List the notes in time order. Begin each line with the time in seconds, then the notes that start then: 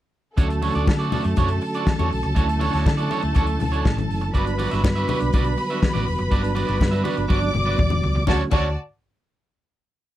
0.37 D2 D3 F#3 A3 C#4 D4 F#4 A4 C#5 A5, kick, closed hi-hat, muted conga
0.49 muted clean electric guitar stroke, closed hi-hat
0.62 A3 D4 F#4 C#5, open hi-hat, muted conga
0.75 D2 A3 D4 F#4 D5, closed hi-hat
0.87 D3, muted clean electric guitar stroke, kick, snare, high conga
0.99 A3 D4 F#4 D5, closed hi-hat
1.12 A3 D4 F#4 D5, open hi-hat, muted conga, low conga
1.24 F#2, muted clean electric guitar stroke, closed hi-hat
1.36 F#2 A3 D4 F#4 C#5, kick, closed hi-hat, muted conga, low conga
1.48 muted clean electric guitar stroke, closed hi-hat
1.61 muted clean electric guitar stroke, open hi-hat
1.74 A3 D4 F#4 D5, closed hi-hat
1.87 muted clean electric guitar stroke, kick, snare, high conga
1.99 E2 A3 D4 F#4 C#5, closed hi-hat, high conga
2.11 B1, muted clean electric guitar stroke, open hi-hat
2.23 C#2, muted clean electric guitar stroke, closed hi-hat
2.35 D2 A3 D4 E4 F#4 C#5, kick, closed hi-hat, muted conga
2.48 muted clean electric guitar stroke, closed hi-hat
2.59 A3 D4 F#4 C#5, open hi-hat, muted conga
2.73 D2 A3 D4 F#4 C#5, snare, closed hi-hat
2.86 D3, muted clean electric guitar stroke, kick, snare, high conga
2.97 A3 D4 F#4 D5, closed hi-hat
3.10 A3 D4 F#4 C#5, open hi-hat, muted conga
3.22 D2, muted clean electric guitar stroke, closed hi-hat
3.35 D2 A3 D4 F#4 C#5, kick, closed hi-hat, muted conga
3.47 muted clean electric guitar stroke, closed hi-hat
3.59 D2, muted clean electric guitar stroke, open hi-hat, low conga
3.72 A3 D4 F#4 C#5, closed hi-hat
3.85 A1, muted clean electric guitar stroke, kick, snare, high conga
3.97 muted clean electric guitar stroke, closed hi-hat, high conga
4.11 F#1, open hi-hat
4.21 muted clean electric guitar stroke, closed hi-hat
4.34 G1 G3 B3 D4 F#4 B4 D5 B5, kick, closed hi-hat
4.46 muted clean electric guitar stroke, closed hi-hat
4.58 D4 F#4 B4 D5, open hi-hat, muted conga
4.71 G1 D4 F#4 B4 E5, snare, closed hi-hat
4.83 G2, muted clean electric guitar stroke, kick, snare, high conga
4.95 D4 F#4 B4 E5, closed hi-hat
5.08 D4 F#4 B4 E5, open hi-hat, muted conga, low conga
5.20 B1, muted clean electric guitar stroke, closed hi-hat
5.33 B1 D4 F#4 B4 D5, kick, closed hi-hat, muted conga, low conga
5.44 muted clean electric guitar stroke, closed hi-hat
5.57 muted clean electric guitar stroke, open hi-hat
5.70 D4 F#4 B4 E5, closed hi-hat
5.82 muted clean electric guitar stroke, kick, snare, high conga
5.93 A1 D4 F#4 B4 D5, closed hi-hat, high conga
6.06 E1, muted clean electric guitar stroke, open hi-hat
6.18 F#1, muted clean electric guitar stroke, closed hi-hat
6.31 G1 D4 F#4 B4 D5, kick, closed hi-hat
6.43 muted clean electric guitar stroke, closed hi-hat
6.55 D4 F#4 B4 D5, open hi-hat, muted conga
6.67 G1 D4 F#4 B4 D5, closed hi-hat
6.79 G2, muted clean electric guitar stroke, kick, snare, high conga
6.91 D4 F#4 B4 E5, closed hi-hat
7.04 D4 F#4 B4 D5, open hi-hat, muted conga
7.17 G1, muted clean electric guitar stroke, closed hi-hat
7.28 G1 D4 F#4 B4 D5 D6, kick, high tom, muted conga
7.41 muted clean electric guitar stroke, high tom
7.53 G1, muted clean electric guitar stroke, mid tom, low conga
7.65 D4 F#4 B4 D5, mid tom
7.78 E1, muted clean electric guitar stroke, kick, mid tom, high conga
7.90 muted clean electric guitar stroke, mid tom, high conga
8.03 C#2, floor tom
8.15 muted clean electric guitar stroke, floor tom
8.27 D2 D3 F#3 A3 C#4 F#4 A4 C#5 D5 A5, kick, snare, muted conga
8.51 D2 C#4 F#4 A4 C#5 D5 A5, kick, crash, muted conga